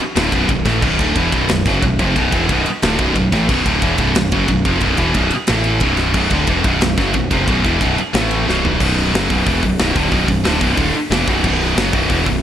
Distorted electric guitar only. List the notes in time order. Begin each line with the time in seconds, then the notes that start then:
0.16 D2 A2 D3
0.33 B1 F#2 B2
0.49 B1 F#2
0.65 A2 E3 A3
0.82 B1 F#2 B2
0.99 D2 A2 D3
1.16 E2 B2 E3
1.32 B1 F#2 B2
1.50 B1 F#2
1.67 F#2 C#3 F#3
1.83 B1 F#2
1.99 F2 C3 F3
2.16 B1 F#2 B2
2.34 E2 B2 E3
2.50 B1 F#2 B2
2.67 muted distorted electric guitar stroke
2.83 D2 A2 D3
2.99 B1 F#2 B2
3.15 B1 F#2
3.32 A2 E3 A3
3.49 B1 F#2 B2
3.66 D2 A2 D3
3.82 E2 B2 E3
3.98 B1 F#2 B2
4.15 B1 F#2
4.32 F#2 C#3 F#3
4.48 B1 F#2
4.65 F2 C3 F3
4.81 B1 F#2 B2
4.98 E2 B2 E3
5.15 B1 F#2 B2
5.32 muted distorted electric guitar stroke
5.48 A2 E3 A3
5.81 B1 F#2 B2
6.14 B1 F#2 B2
6.32 D2 A2 D3
6.49 E2 B2 E3
6.65 B1 F#2 B2
6.82 B1 F#2
6.98 F#2 C#3 F#3
7.14 B1 F#2
7.31 F2 C3 F3
7.47 B1 F#2 B2
7.64 E2 B2 E3
7.80 B1 F#2 B2
7.98 muted distorted electric guitar stroke
8.13 A2 E3 A3
8.47 B1 F#2 B2
8.80 B1 F#2 B2
9.14 F#2 C#3 F#3
9.30 B1 F#2 B2
9.46 E2 B2 E3
9.63 B1 F#2
9.80 B1 F#2 B2
9.95 D2 A2 D3
10.10 B1 F#2 B2
10.28 B1 F#2
10.44 D2 A2 D3
10.61 B1 F#2 B2
10.77 D2 A2 D3
10.94 muted distorted electric guitar stroke
11.11 E2 B2 E3
11.28 B1 F#2 B2
11.43 B1 F#2 B2
11.77 F#2 C#3 F#3
11.93 B1 F#2 B2
12.10 E2 B2 E3
12.28 B1 F#2